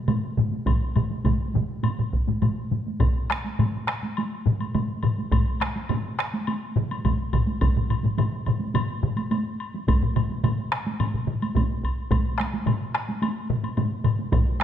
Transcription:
0.08 taiko low-mid medium
0.08 taiko mid medium
0.08 taiko high medium
0.08 high woodblock soft
0.37 taiko low-mid medium
0.37 taiko mid medium
0.37 taiko high soft
0.52 taiko high soft
0.66 taiko medium
0.66 taiko low-mid medium
0.66 taiko mid medium
0.66 taiko high medium
0.66 high woodblock soft
0.95 taiko low-mid medium
0.95 taiko mid loud
0.95 taiko high soft
0.95 high woodblock soft
1.11 taiko high soft
1.24 taiko medium
1.24 taiko low-mid medium
1.24 taiko mid medium
1.24 taiko high medium
1.24 high woodblock soft
1.54 taiko low-mid medium
1.54 taiko mid medium
1.54 taiko high medium
1.83 taiko low-mid medium
1.83 taiko mid medium
1.83 taiko high medium
1.83 high woodblock soft
1.99 taiko low-mid medium
1.99 taiko mid medium
2.13 taiko medium
2.13 taiko high soft
2.27 taiko low-mid medium
2.27 taiko mid medium
2.27 taiko high medium
2.42 taiko low-mid medium
2.42 taiko mid medium
2.42 taiko high medium
2.42 high woodblock soft
2.71 taiko low-mid medium
2.71 taiko mid medium
2.71 taiko high soft
2.87 taiko high soft
3.00 taiko medium
3.00 taiko low-mid medium
3.00 taiko mid medium
3.00 taiko high medium
3.00 high woodblock soft
3.30 taiko rim medium
3.30 taiko high soft
3.30 high woodblock soft
3.44 taiko high soft
3.59 taiko low-mid loud
3.59 taiko mid medium
3.59 taiko high medium
3.59 high woodblock soft
3.88 taiko rim medium
3.88 high woodblock soft
4.03 taiko high soft
4.17 taiko high medium
4.17 high woodblock soft
4.46 taiko low-mid loud
4.46 taiko mid medium
4.60 taiko high soft
4.60 high woodblock soft
4.75 taiko low-mid medium
4.75 taiko mid medium
4.75 taiko high medium
4.75 high woodblock soft
5.03 taiko low-mid medium
5.03 taiko mid medium
5.03 high woodblock soft
5.18 taiko high soft
5.32 taiko medium
5.32 taiko low-mid medium
5.32 taiko mid medium
5.32 taiko high medium
5.32 high woodblock soft
5.60 taiko rim medium
5.60 taiko high soft
5.60 high woodblock soft
5.76 taiko high medium
5.89 taiko low-mid medium
5.89 taiko mid loud
5.89 taiko high medium
5.89 high woodblock soft
6.18 taiko rim medium
6.18 high woodblock soft
6.34 taiko high medium
6.47 taiko high medium
6.47 high woodblock medium
6.76 taiko low-mid medium
6.76 taiko mid loud
6.91 taiko high medium
6.91 high woodblock soft
7.05 taiko medium
7.05 taiko low-mid medium
7.05 taiko mid medium
7.05 taiko high medium
7.05 high woodblock soft
7.33 taiko medium
7.33 taiko low-mid loud
7.33 taiko mid medium
7.33 high woodblock soft
7.47 taiko high medium
7.61 taiko medium
7.61 taiko low-mid medium
7.61 taiko mid medium
7.61 taiko high medium
7.61 high woodblock medium
7.76 taiko low-mid medium
7.76 taiko mid medium
7.90 taiko low-mid medium
7.90 taiko mid medium
7.90 taiko high soft
7.90 high woodblock soft
8.03 taiko low-mid medium
8.03 taiko mid medium
8.03 taiko high medium
8.18 taiko low-mid medium
8.18 taiko mid loud
8.18 taiko high medium
8.18 high woodblock soft
8.46 taiko low-mid medium
8.46 taiko mid medium
8.46 high woodblock soft
8.60 taiko high medium
8.74 taiko low-mid loud
8.74 taiko mid medium
8.74 taiko high medium
8.74 high woodblock medium
9.03 taiko low-mid loud
9.03 taiko mid medium
9.16 taiko high medium
9.16 high woodblock soft
9.31 taiko high medium
9.31 high woodblock soft
9.60 high woodblock soft
9.74 taiko high soft
9.88 taiko medium
9.88 taiko low-mid medium
9.88 taiko mid medium
9.88 taiko high medium
9.88 high woodblock soft
10.02 taiko low-mid medium
10.02 taiko mid medium
10.16 taiko low-mid medium
10.16 taiko mid loud
10.16 taiko high soft
10.16 high woodblock soft
10.31 taiko high medium
10.44 taiko low-mid loud
10.44 taiko mid loud
10.44 taiko high medium
10.44 high woodblock soft
10.72 taiko rim medium
10.72 high woodblock soft
10.87 taiko high medium
11.00 taiko low-mid medium
11.00 taiko mid medium
11.00 taiko high medium
11.00 high woodblock soft
11.14 taiko low-mid medium
11.14 taiko mid medium
11.27 taiko low-mid medium
11.27 taiko mid medium
11.42 taiko high medium
11.42 high woodblock soft
11.55 taiko medium
11.55 taiko low-mid medium
11.55 taiko mid medium
11.55 taiko high medium
11.55 high woodblock soft
11.83 taiko medium
11.83 high woodblock soft
12.11 taiko medium
12.11 taiko low-mid medium
12.11 taiko mid medium
12.11 taiko high medium
12.11 high woodblock medium
12.38 taiko rim medium
12.38 high woodblock soft
12.40 taiko rim medium
12.40 taiko high medium
12.54 taiko high medium
12.66 taiko low-mid loud
12.66 taiko mid medium
12.66 taiko high medium
12.66 high woodblock soft
12.94 taiko rim medium
12.94 high woodblock soft
13.09 taiko high medium
13.22 taiko high medium
13.22 high woodblock soft
13.50 taiko low-mid loud
13.50 taiko mid loud
13.63 taiko high medium
13.63 high woodblock soft
13.77 taiko low-mid medium
13.77 taiko mid loud
13.77 taiko high medium
13.77 high woodblock soft
14.04 taiko low-mid loud
14.04 taiko mid medium
14.04 high woodblock soft
14.19 taiko high medium
14.32 taiko loud
14.32 taiko low-mid medium
14.32 taiko mid medium
14.32 taiko high medium
14.32 high woodblock soft
14.60 taiko rim medium
14.60 taiko high soft

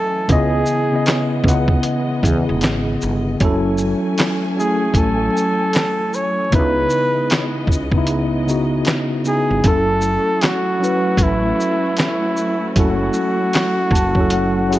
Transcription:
0.00 9.60 E3 medium
0.00 0.26 F#3 medium
0.00 0.26 A3 medium
0.00 0.26 C#4 medium
0.00 0.27 A4 loud
0.00 0.26 G#5 medium
0.28 0.62 C#2 loud
0.28 0.68 C#3 loud
0.28 3.37 C#3 medium
0.28 3.37 G#3 medium
0.28 3.37 B3 medium
0.28 0.68 B3 loud
0.28 0.69 E4 loud
0.28 1.43 G#4 loud
0.28 3.37 D#5 medium
0.28 kick loud
0.28 closed hi-hat medium
0.32 0.70 D#5 loud
0.66 shaker soft
0.91 1.31 C#3 medium
0.91 1.31 B3 medium
0.91 1.32 E4 medium
0.96 1.33 D#5 medium
1.06 snare loud
1.06 clap medium
1.06 closed hi-hat medium
1.44 1.77 C#2 medium
1.44 2.00 C#3 medium
1.44 2.01 B3 medium
1.44 2.02 E4 medium
1.44 kick loud
1.48 2.03 F#5 loud
1.48 closed hi-hat medium
1.48 shaker medium
1.68 kick medium
1.83 closed hi-hat medium
2.23 2.44 E2 medium
2.23 3.02 C#3 medium
2.23 3.03 B3 medium
2.23 3.04 E4 medium
2.23 kick loud
2.23 closed hi-hat soft
2.23 shaker soft
2.28 3.04 G#4 medium
2.49 2.64 E1 medium
2.61 2.96 G#1 loud
2.61 snare loud
2.61 clap medium
2.61 closed hi-hat medium
3.01 3.35 G1 loud
3.01 shaker soft
3.40 3.93 F#1 loud
3.40 4.19 F#3 loud
3.40 6.49 F#3 medium
3.40 6.49 A3 medium
3.40 6.49 C#4 medium
3.40 4.20 C#4 loud
3.40 4.21 E4 loud
3.40 6.49 G#5 medium
3.40 kick loud
3.40 closed hi-hat medium
3.45 4.21 A4 loud
3.78 shaker soft
4.18 snare loud
4.18 clap medium
4.18 closed hi-hat medium
4.56 5.64 F#3 medium
4.56 5.65 C#4 medium
4.56 5.66 E4 medium
4.56 4.99 G#4 medium
4.56 shaker medium
4.61 5.67 A3 medium
4.94 5.27 A1 medium
4.94 kick medium
4.94 closed hi-hat medium
4.98 6.16 A4 loud
5.37 shaker soft
5.73 snare loud
5.73 clap loud
5.73 closed hi-hat medium
6.14 6.53 C#5 loud
6.14 shaker soft
6.51 6.85 C#2 loud
6.51 7.46 C#3 medium
6.51 9.61 C#3 medium
6.51 9.61 G#3 medium
6.51 7.47 B3 medium
6.51 9.61 B3 medium
6.51 7.48 D#4 medium
6.51 7.66 B4 loud
6.51 9.61 D#5 medium
6.51 kick loud
6.51 closed hi-hat medium
6.55 7.48 E4 loud
6.90 shaker soft
7.30 snare loud
7.30 clap medium
7.30 closed hi-hat medium
7.67 8.82 C#2 medium
7.67 kick loud
7.72 shaker soft
7.92 8.32 C#3 medium
7.92 8.33 B3 medium
7.92 kick medium
7.96 8.34 D#4 medium
7.96 8.35 E4 loud
8.07 closed hi-hat medium
8.46 9.02 C#3 medium
8.46 9.03 B3 medium
8.46 9.03 D#4 medium
8.46 shaker soft
8.50 9.04 F#4 medium
8.85 snare loud
8.85 clap loud
8.85 closed hi-hat medium
9.25 9.54 C#3 medium
9.25 9.55 B3 medium
9.25 9.55 D#4 medium
9.25 9.68 G#4 loud
9.25 shaker soft
9.29 9.56 E4 medium
9.50 9.62 G1 medium
9.64 10.16 F#1 loud
9.64 10.42 F#3 medium
9.64 14.79 F#3 medium
9.64 14.79 A3 medium
9.64 14.79 C#4 medium
9.64 10.43 C#4 medium
9.64 14.79 E4 medium
9.64 10.44 E4 medium
9.64 14.79 F#4 medium
9.64 10.46 A4 loud
9.64 kick loud
9.64 closed hi-hat medium
9.68 10.45 A4 loud
10.01 shaker medium
10.41 11.24 F#4 loud
10.41 snare loud
10.41 clap medium
10.41 closed hi-hat medium
10.80 11.88 F#3 medium
10.80 11.89 C#4 medium
10.80 11.89 E4 medium
10.84 11.90 B4 medium
10.84 shaker soft
11.17 11.51 A1 medium
11.17 kick medium
11.17 closed hi-hat medium
11.23 11.99 E4 loud
11.60 shaker soft
11.97 12.73 E4 loud
11.97 snare loud
11.97 clap medium
11.97 closed hi-hat medium
12.37 shaker medium
12.75 13.08 F#1 loud
12.75 13.70 F#3 medium
12.75 13.71 C#4 medium
12.75 13.72 E4 medium
12.75 14.79 F#4 loud
12.75 kick loud
12.75 closed hi-hat medium
12.80 13.72 A4 loud
13.13 shaker soft
13.53 snare loud
13.53 clap medium
13.53 closed hi-hat medium
13.91 14.79 F#1 medium
13.91 14.29 A5 medium
13.91 kick medium
13.95 closed hi-hat medium
13.95 shaker medium
14.15 14.56 F#3 loud
14.15 14.56 C#4 medium
14.15 kick medium
14.19 14.57 E4 medium
14.19 14.58 A4 loud
14.30 14.69 F#5 medium
14.30 closed hi-hat medium
14.69 14.79 F#3 medium
14.69 14.79 C#4 medium
14.69 14.79 E4 medium
14.69 14.79 F#5 medium
14.69 closed hi-hat soft
14.69 shaker soft
14.73 14.79 G#4 medium

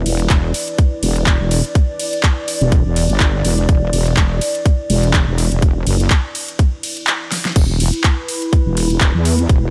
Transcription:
0.00 7.52 E4 medium
0.00 7.52 B4 medium
0.00 7.52 D5 medium
0.06 0.28 E1 loud
0.06 open hi-hat loud
0.06 ride medium
0.19 closed hi-hat medium
0.30 0.53 E1 loud
0.30 kick loud
0.30 clap loud
0.30 closed hi-hat medium
0.54 open hi-hat loud
0.54 ride medium
0.68 closed hi-hat soft
0.78 kick loud
0.78 closed hi-hat medium
1.03 1.38 E1 medium
1.03 open hi-hat loud
1.03 ride medium
1.16 closed hi-hat soft
1.26 kick loud
1.26 clap loud
1.26 closed hi-hat medium
1.40 1.62 E1 loud
1.51 open hi-hat loud
1.51 ride medium
1.65 closed hi-hat medium
1.75 kick loud
1.75 closed hi-hat medium
1.99 open hi-hat loud
1.99 ride medium
2.13 closed hi-hat medium
2.23 kick loud
2.23 clap loud
2.23 closed hi-hat medium
2.48 open hi-hat loud
2.48 ride medium
2.61 2.83 E1 loud
2.61 closed hi-hat medium
2.72 kick loud
2.72 closed hi-hat medium
2.85 3.08 E1 loud
2.96 open hi-hat loud
2.96 ride medium
3.10 3.43 G1 loud
3.10 closed hi-hat medium
3.20 kick loud
3.20 clap loud
3.20 closed hi-hat medium
3.45 3.67 E1 loud
3.45 open hi-hat loud
3.45 ride medium
3.58 closed hi-hat medium
3.69 3.91 E1 loud
3.69 kick loud
3.69 closed hi-hat medium
3.93 4.15 E1 loud
3.93 open hi-hat loud
3.93 ride medium
4.07 closed hi-hat medium
4.17 4.40 E1 loud
4.17 kick loud
4.17 clap loud
4.17 closed hi-hat medium
4.41 open hi-hat loud
4.41 ride medium
4.55 closed hi-hat medium
4.66 kick loud
4.66 closed hi-hat medium
4.90 5.25 E1 loud
4.90 open hi-hat loud
4.90 ride medium
5.03 closed hi-hat medium
5.14 kick loud
5.14 clap loud
5.14 closed hi-hat medium
5.27 5.49 E1 loud
5.38 open hi-hat loud
5.38 ride medium
5.52 5.85 E1 loud
5.52 closed hi-hat medium
5.62 kick loud
5.62 closed hi-hat medium
5.87 6.09 F#1 loud
5.87 open hi-hat loud
5.87 ride medium
6.00 closed hi-hat medium
6.10 kick loud
6.10 clap loud
6.10 closed hi-hat medium
6.35 open hi-hat loud
6.35 ride medium
6.48 closed hi-hat medium
6.59 kick loud
6.59 closed hi-hat medium
6.83 open hi-hat loud
6.83 ride medium
6.97 closed hi-hat medium
7.07 clap loud
7.07 closed hi-hat medium
7.32 snare medium
7.32 open hi-hat loud
7.32 ride medium
7.45 snare medium
7.45 closed hi-hat medium
7.56 7.91 E1 loud
7.56 9.70 E4 medium
7.56 kick loud
7.56 closed hi-hat medium
7.56 crash loud
7.80 open hi-hat loud
7.80 ride medium
7.92 9.70 B4 medium
7.92 closed hi-hat medium
7.97 9.70 B5 medium
8.04 kick loud
8.04 clap loud
8.04 closed hi-hat medium
8.28 open hi-hat loud
8.28 ride medium
8.42 closed hi-hat medium
8.53 kick loud
8.53 closed hi-hat medium
8.66 8.99 E1 loud
8.77 open hi-hat loud
8.77 ride medium
8.90 closed hi-hat medium
9.01 9.12 E1 loud
9.01 kick loud
9.01 clap loud
9.01 closed hi-hat medium
9.14 9.48 E2 loud
9.25 open hi-hat loud
9.25 ride medium
9.39 closed hi-hat medium
9.49 9.70 E1 loud
9.49 kick loud
9.49 closed hi-hat medium

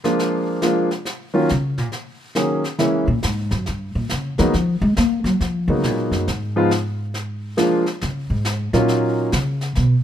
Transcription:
0.04 0.60 F3 medium
0.04 0.59 G#3 medium
0.04 0.59 A#3 medium
0.04 0.60 D4 medium
0.04 0.59 F4 medium
0.04 snare soft
0.19 brush sweep soft
0.19 snare soft
0.62 0.88 F3 medium
0.62 0.88 G#3 medium
0.62 0.88 A#3 medium
0.62 0.88 D4 medium
0.62 0.88 F4 medium
0.62 snare medium
0.91 snare soft
1.05 brush sweep medium
1.05 snare soft
1.34 1.48 D#3 medium
1.34 1.47 F#3 medium
1.34 1.48 A#3 medium
1.34 1.48 C#4 medium
1.34 1.48 F4 medium
1.49 1.78 C#3 loud
1.49 snare medium
1.78 1.87 A#2 medium
1.78 snare soft
1.92 brush sweep soft
1.92 snare soft
2.35 2.62 D#3 medium
2.35 2.62 F#3 soft
2.35 2.62 A#3 soft
2.35 2.62 C#4 soft
2.35 2.62 G#4 medium
2.35 snare medium
2.64 snare soft
2.79 3.05 E3 medium
2.79 3.05 G#3 soft
2.79 3.05 A#3 soft
2.79 3.05 C#4 medium
2.79 3.05 E4 medium
2.79 brush sweep medium
2.79 snare medium
3.07 3.22 A#2 medium
3.23 3.51 G#2 medium
3.23 snare medium
3.51 3.66 F#2 medium
3.51 snare soft
3.66 3.95 G2 medium
3.66 brush sweep soft
3.66 snare soft
3.95 4.10 A#2 medium
4.09 4.38 C#3 medium
4.09 snare medium
4.38 4.53 E3 medium
4.38 4.52 F#3 medium
4.38 4.52 G#3 medium
4.38 4.52 A#3 medium
4.38 4.52 B3 medium
4.38 4.53 D#4 medium
4.38 snare soft
4.53 4.81 F3 medium
4.53 brush sweep medium
4.53 snare soft
4.82 4.96 G#3 medium
4.97 5.24 A#3 loud
4.97 snare medium
5.24 5.39 F#3 medium
5.24 snare soft
5.41 5.67 F3 medium
5.41 brush sweep medium
5.41 snare soft
5.68 5.84 C#3 medium
5.68 6.25 F#3 medium
5.68 6.25 G#3 soft
5.68 6.25 A#3 soft
5.68 6.25 B3 soft
5.68 6.25 D#4 medium
5.84 6.11 A#2 medium
5.84 snare medium
6.11 6.26 F#2 medium
6.11 snare soft
6.28 7.54 G#2 medium
6.28 brush sweep medium
6.28 snare soft
6.56 6.70 F3 medium
6.56 6.70 G#3 medium
6.56 6.70 B3 medium
6.56 6.70 D#4 medium
6.56 6.70 F4 medium
6.71 snare medium
7.14 brush sweep soft
7.14 snare soft
7.57 7.83 F3 medium
7.57 7.83 G#3 medium
7.57 7.83 A#3 medium
7.57 7.83 D4 medium
7.57 7.83 F4 medium
7.57 snare medium
7.86 snare soft
8.01 8.29 C#3 medium
8.01 brush sweep soft
8.01 snare medium
8.30 8.70 G#2 medium
8.45 snare medium
8.73 9.28 A#2 medium
8.73 9.29 F#3 medium
8.73 9.29 A#3 medium
8.73 9.29 C#4 medium
8.73 9.29 D#4 medium
8.73 9.29 F4 medium
8.73 snare soft
8.88 brush sweep medium
8.88 snare soft
9.32 9.73 C#3 loud
9.32 snare medium
9.61 snare soft
9.75 9.94 B2 medium
9.75 brush sweep soft
9.75 snare soft

